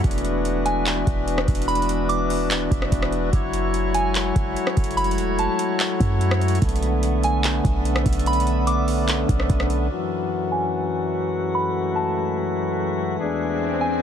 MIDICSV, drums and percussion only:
0, 0, Header, 1, 2, 480
1, 0, Start_track
1, 0, Key_signature, 3, "minor"
1, 0, Tempo, 410959
1, 49, Time_signature, 4, 2, 24, 8
1, 16375, End_track
2, 0, Start_track
2, 0, Title_t, "Drums"
2, 48, Note_on_c, 9, 42, 54
2, 49, Note_on_c, 9, 36, 121
2, 128, Note_off_c, 9, 42, 0
2, 128, Note_on_c, 9, 42, 58
2, 166, Note_off_c, 9, 36, 0
2, 209, Note_off_c, 9, 42, 0
2, 209, Note_on_c, 9, 42, 59
2, 287, Note_off_c, 9, 42, 0
2, 287, Note_on_c, 9, 42, 78
2, 404, Note_off_c, 9, 42, 0
2, 526, Note_on_c, 9, 42, 77
2, 643, Note_off_c, 9, 42, 0
2, 767, Note_on_c, 9, 42, 88
2, 884, Note_off_c, 9, 42, 0
2, 1009, Note_on_c, 9, 42, 69
2, 1010, Note_on_c, 9, 39, 121
2, 1125, Note_off_c, 9, 42, 0
2, 1126, Note_off_c, 9, 39, 0
2, 1248, Note_on_c, 9, 36, 100
2, 1250, Note_on_c, 9, 42, 67
2, 1365, Note_off_c, 9, 36, 0
2, 1367, Note_off_c, 9, 42, 0
2, 1490, Note_on_c, 9, 42, 75
2, 1607, Note_off_c, 9, 42, 0
2, 1610, Note_on_c, 9, 37, 109
2, 1727, Note_off_c, 9, 37, 0
2, 1728, Note_on_c, 9, 42, 55
2, 1729, Note_on_c, 9, 36, 102
2, 1809, Note_off_c, 9, 42, 0
2, 1809, Note_on_c, 9, 42, 54
2, 1846, Note_off_c, 9, 36, 0
2, 1889, Note_off_c, 9, 42, 0
2, 1889, Note_on_c, 9, 42, 59
2, 1969, Note_off_c, 9, 42, 0
2, 1969, Note_on_c, 9, 42, 54
2, 2048, Note_off_c, 9, 42, 0
2, 2048, Note_on_c, 9, 42, 57
2, 2128, Note_off_c, 9, 42, 0
2, 2128, Note_on_c, 9, 42, 57
2, 2209, Note_off_c, 9, 42, 0
2, 2209, Note_on_c, 9, 42, 77
2, 2325, Note_off_c, 9, 42, 0
2, 2447, Note_on_c, 9, 42, 74
2, 2564, Note_off_c, 9, 42, 0
2, 2689, Note_on_c, 9, 46, 63
2, 2805, Note_off_c, 9, 46, 0
2, 2929, Note_on_c, 9, 42, 71
2, 2930, Note_on_c, 9, 39, 124
2, 3046, Note_off_c, 9, 42, 0
2, 3047, Note_off_c, 9, 39, 0
2, 3169, Note_on_c, 9, 36, 101
2, 3173, Note_on_c, 9, 42, 71
2, 3286, Note_off_c, 9, 36, 0
2, 3290, Note_off_c, 9, 42, 0
2, 3294, Note_on_c, 9, 37, 93
2, 3410, Note_on_c, 9, 36, 106
2, 3411, Note_off_c, 9, 37, 0
2, 3412, Note_on_c, 9, 42, 74
2, 3527, Note_off_c, 9, 36, 0
2, 3529, Note_off_c, 9, 42, 0
2, 3533, Note_on_c, 9, 37, 109
2, 3649, Note_off_c, 9, 37, 0
2, 3650, Note_on_c, 9, 42, 64
2, 3767, Note_off_c, 9, 42, 0
2, 3889, Note_on_c, 9, 36, 116
2, 3889, Note_on_c, 9, 42, 74
2, 4006, Note_off_c, 9, 36, 0
2, 4006, Note_off_c, 9, 42, 0
2, 4129, Note_on_c, 9, 42, 75
2, 4246, Note_off_c, 9, 42, 0
2, 4367, Note_on_c, 9, 42, 81
2, 4484, Note_off_c, 9, 42, 0
2, 4607, Note_on_c, 9, 42, 87
2, 4724, Note_off_c, 9, 42, 0
2, 4850, Note_on_c, 9, 42, 71
2, 4851, Note_on_c, 9, 39, 123
2, 4967, Note_off_c, 9, 42, 0
2, 4968, Note_off_c, 9, 39, 0
2, 5089, Note_on_c, 9, 36, 100
2, 5091, Note_on_c, 9, 42, 70
2, 5206, Note_off_c, 9, 36, 0
2, 5208, Note_off_c, 9, 42, 0
2, 5331, Note_on_c, 9, 42, 76
2, 5448, Note_off_c, 9, 42, 0
2, 5452, Note_on_c, 9, 37, 108
2, 5569, Note_off_c, 9, 37, 0
2, 5570, Note_on_c, 9, 42, 54
2, 5571, Note_on_c, 9, 36, 101
2, 5651, Note_off_c, 9, 42, 0
2, 5651, Note_on_c, 9, 42, 56
2, 5687, Note_off_c, 9, 36, 0
2, 5731, Note_off_c, 9, 42, 0
2, 5731, Note_on_c, 9, 42, 55
2, 5810, Note_off_c, 9, 42, 0
2, 5810, Note_on_c, 9, 42, 58
2, 5890, Note_off_c, 9, 42, 0
2, 5890, Note_on_c, 9, 42, 55
2, 5971, Note_off_c, 9, 42, 0
2, 5971, Note_on_c, 9, 42, 57
2, 6051, Note_off_c, 9, 42, 0
2, 6051, Note_on_c, 9, 42, 76
2, 6168, Note_off_c, 9, 42, 0
2, 6291, Note_on_c, 9, 42, 78
2, 6408, Note_off_c, 9, 42, 0
2, 6530, Note_on_c, 9, 42, 84
2, 6647, Note_off_c, 9, 42, 0
2, 6772, Note_on_c, 9, 42, 73
2, 6773, Note_on_c, 9, 39, 123
2, 6889, Note_off_c, 9, 42, 0
2, 6890, Note_off_c, 9, 39, 0
2, 7011, Note_on_c, 9, 36, 99
2, 7014, Note_on_c, 9, 42, 71
2, 7128, Note_off_c, 9, 36, 0
2, 7131, Note_off_c, 9, 42, 0
2, 7253, Note_on_c, 9, 42, 75
2, 7370, Note_off_c, 9, 42, 0
2, 7373, Note_on_c, 9, 37, 107
2, 7490, Note_off_c, 9, 37, 0
2, 7492, Note_on_c, 9, 42, 56
2, 7571, Note_off_c, 9, 42, 0
2, 7571, Note_on_c, 9, 42, 53
2, 7650, Note_off_c, 9, 42, 0
2, 7650, Note_on_c, 9, 42, 55
2, 7731, Note_off_c, 9, 42, 0
2, 7731, Note_on_c, 9, 36, 119
2, 7731, Note_on_c, 9, 42, 56
2, 7811, Note_off_c, 9, 42, 0
2, 7811, Note_on_c, 9, 42, 58
2, 7848, Note_off_c, 9, 36, 0
2, 7891, Note_off_c, 9, 42, 0
2, 7891, Note_on_c, 9, 42, 55
2, 7972, Note_off_c, 9, 42, 0
2, 7972, Note_on_c, 9, 42, 76
2, 8089, Note_off_c, 9, 42, 0
2, 8209, Note_on_c, 9, 42, 75
2, 8326, Note_off_c, 9, 42, 0
2, 8450, Note_on_c, 9, 42, 86
2, 8567, Note_off_c, 9, 42, 0
2, 8692, Note_on_c, 9, 42, 72
2, 8693, Note_on_c, 9, 39, 123
2, 8808, Note_off_c, 9, 42, 0
2, 8809, Note_off_c, 9, 39, 0
2, 8931, Note_on_c, 9, 36, 102
2, 8934, Note_on_c, 9, 42, 72
2, 9048, Note_off_c, 9, 36, 0
2, 9050, Note_off_c, 9, 42, 0
2, 9173, Note_on_c, 9, 42, 75
2, 9289, Note_off_c, 9, 42, 0
2, 9293, Note_on_c, 9, 37, 105
2, 9410, Note_off_c, 9, 37, 0
2, 9411, Note_on_c, 9, 36, 98
2, 9411, Note_on_c, 9, 42, 54
2, 9491, Note_off_c, 9, 42, 0
2, 9491, Note_on_c, 9, 42, 56
2, 9528, Note_off_c, 9, 36, 0
2, 9571, Note_off_c, 9, 42, 0
2, 9571, Note_on_c, 9, 42, 56
2, 9651, Note_off_c, 9, 42, 0
2, 9651, Note_on_c, 9, 42, 54
2, 9731, Note_off_c, 9, 42, 0
2, 9731, Note_on_c, 9, 42, 57
2, 9811, Note_off_c, 9, 42, 0
2, 9811, Note_on_c, 9, 42, 58
2, 9891, Note_off_c, 9, 42, 0
2, 9891, Note_on_c, 9, 42, 78
2, 10008, Note_off_c, 9, 42, 0
2, 10128, Note_on_c, 9, 42, 77
2, 10245, Note_off_c, 9, 42, 0
2, 10370, Note_on_c, 9, 46, 61
2, 10487, Note_off_c, 9, 46, 0
2, 10611, Note_on_c, 9, 42, 72
2, 10612, Note_on_c, 9, 39, 120
2, 10728, Note_off_c, 9, 42, 0
2, 10729, Note_off_c, 9, 39, 0
2, 10850, Note_on_c, 9, 36, 101
2, 10853, Note_on_c, 9, 42, 68
2, 10967, Note_off_c, 9, 36, 0
2, 10970, Note_off_c, 9, 42, 0
2, 10974, Note_on_c, 9, 37, 90
2, 11091, Note_off_c, 9, 37, 0
2, 11091, Note_on_c, 9, 36, 100
2, 11091, Note_on_c, 9, 42, 73
2, 11208, Note_off_c, 9, 36, 0
2, 11208, Note_off_c, 9, 42, 0
2, 11211, Note_on_c, 9, 37, 105
2, 11328, Note_off_c, 9, 37, 0
2, 11329, Note_on_c, 9, 42, 66
2, 11446, Note_off_c, 9, 42, 0
2, 16375, End_track
0, 0, End_of_file